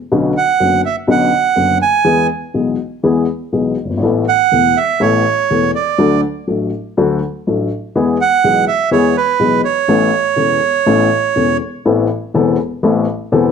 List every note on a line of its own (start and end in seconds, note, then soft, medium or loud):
0.12 0.32 B1 medium
0.12 0.32 B2 medium
0.12 0.32 D3 medium
0.12 0.32 B3 soft
0.12 0.32 C#4 soft
0.12 0.32 F#4 medium
0.37 0.82 F#5 medium
0.60 0.80 F#1 soft
0.60 0.81 F#2 soft
0.60 0.80 D3 soft
0.60 0.80 B3 soft
0.60 0.81 C#4 soft
0.60 0.81 F#4 soft
0.85 0.96 E5 medium
1.07 1.28 B1 medium
1.07 1.29 B2 medium
1.07 1.28 D3 medium
1.07 1.29 B3 soft
1.07 1.29 C#4 soft
1.07 1.29 F#4 medium
1.07 1.78 F#5 medium
1.56 1.77 F#1 soft
1.56 1.77 F#2 soft
1.56 1.77 D3 soft
1.56 1.77 B3 soft
1.56 1.77 C#4 soft
1.56 1.77 F#4 soft
1.82 2.27 G#5 medium
2.04 2.26 E2 medium
2.04 2.26 E3 medium
2.04 2.26 G#3 soft
2.04 2.26 B3 soft
2.04 2.26 G#4 medium
2.54 2.75 B1 soft
2.54 2.75 B2 soft
2.54 2.75 E3 soft
2.54 2.75 G#3 soft
2.54 2.75 B3 soft
2.54 2.75 G#4 soft
3.03 3.25 E2 medium
3.03 3.24 E3 medium
3.03 3.24 G#3 soft
3.03 3.25 B3 soft
3.03 3.25 G#4 medium
3.52 3.74 B1 soft
3.52 3.74 B2 soft
3.52 3.74 E3 soft
3.52 3.74 G#3 soft
3.52 3.74 B3 soft
3.52 3.74 G#4 soft
3.84 3.91 F#1 soft
3.90 3.97 G1 soft
3.97 4.03 G#1 soft
4.03 4.24 A1 medium
4.03 4.24 A2 medium
4.03 4.24 E3 medium
4.03 4.24 A3 soft
4.03 4.24 B3 soft
4.03 4.24 A4 medium
4.29 4.79 F#5 medium
4.52 4.73 E1 soft
4.52 4.73 E2 soft
4.52 4.72 E3 soft
4.52 4.73 A3 soft
4.52 4.73 B3 soft
4.52 4.73 A4 soft
4.77 5.02 E5 medium
5.00 5.22 A1 medium
5.00 5.22 A2 medium
5.00 5.21 E3 medium
5.00 5.22 A3 soft
5.00 5.21 B3 soft
5.00 5.22 A4 medium
5.00 5.71 C#5 medium
5.50 5.71 E1 soft
5.50 5.71 E2 soft
5.50 5.71 E3 soft
5.50 5.71 A3 soft
5.50 5.71 B3 soft
5.50 5.71 A4 soft
5.75 6.21 D5 medium
5.98 6.20 D2 medium
5.98 6.20 D3 medium
5.98 6.20 F#3 medium
5.98 6.20 A3 soft
5.98 6.20 D4 soft
5.98 6.20 A4 medium
6.47 6.69 A1 soft
6.47 6.69 A2 soft
6.47 6.69 F#3 soft
6.47 6.69 A3 soft
6.47 6.69 D4 soft
6.47 6.69 A4 soft
6.97 7.18 D2 medium
6.97 7.18 D3 medium
6.97 7.18 F#3 medium
6.97 7.18 A3 medium
6.97 7.18 D4 soft
6.97 7.18 A4 medium
7.47 7.67 A1 soft
7.47 7.67 A2 soft
7.47 7.67 F#3 soft
7.47 7.67 A3 soft
7.47 7.68 D4 soft
7.47 7.68 A4 soft
7.95 8.16 E2 medium
7.95 8.16 E3 medium
7.95 8.16 G#3 soft
7.95 8.16 B3 medium
7.95 8.16 G#4 medium
8.21 8.65 F#5 medium
8.44 8.64 B1 soft
8.44 8.64 B2 soft
8.44 8.64 E3 soft
8.44 8.64 G#3 soft
8.44 8.64 B3 soft
8.44 8.64 G#4 soft
8.68 8.90 E5 medium
8.91 9.12 E2 medium
8.91 9.12 E3 medium
8.91 9.12 G#3 soft
8.91 9.12 B3 soft
8.91 9.12 G#4 medium
8.91 9.17 C#5 medium
9.17 9.62 B4 medium
9.39 9.60 B1 soft
9.39 9.60 B2 soft
9.39 9.60 E3 soft
9.39 9.60 G#3 soft
9.39 9.60 B3 soft
9.39 9.60 G#4 soft
9.65 11.57 C#5 medium
9.88 10.09 A1 medium
9.88 10.09 A2 medium
9.88 10.09 E3 medium
9.88 10.09 B3 soft
9.88 10.09 C#4 soft
9.88 10.09 A4 medium
10.36 10.57 E1 soft
10.36 10.57 E2 soft
10.36 10.57 E3 soft
10.36 10.57 B3 soft
10.36 10.58 C#4 soft
10.36 10.58 A4 soft
10.86 11.07 A1 medium
10.86 11.07 A2 medium
10.86 11.07 E3 soft
10.86 11.07 B3 soft
10.86 11.07 C#4 soft
10.86 11.07 A4 medium
11.36 11.57 E1 soft
11.36 11.57 E2 soft
11.36 11.57 E3 soft
11.36 11.57 B3 soft
11.36 11.57 C#4 soft
11.36 11.57 A4 soft
11.85 12.06 A1 medium
11.85 12.06 A2 medium
11.85 12.06 E3 medium
11.85 12.06 B3 medium
11.85 12.06 C4 medium
11.85 12.06 A4 medium
12.34 12.55 E1 medium
12.34 12.55 E2 medium
12.34 12.55 E3 medium
12.34 12.55 B3 medium
12.34 12.55 C4 medium
12.34 12.56 A4 medium
12.83 13.04 A1 medium
12.83 13.04 A2 medium
12.83 13.04 E3 medium
12.83 13.04 B3 medium
12.83 13.04 C4 medium
12.83 13.04 A4 medium
13.32 13.52 E1 medium
13.32 13.52 E2 medium
13.32 13.52 E3 medium
13.32 13.52 B3 medium
13.32 13.52 C4 medium
13.32 13.52 A4 medium